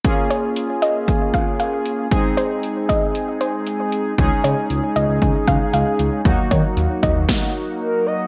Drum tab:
HH |xxxxxxxx|xxxxxxxx|xxxxxxxx|xxxx----|
SD |--------|--------|--------|----o---|
BD |o---oo--|o--o----|o---oo--|oo-oo---|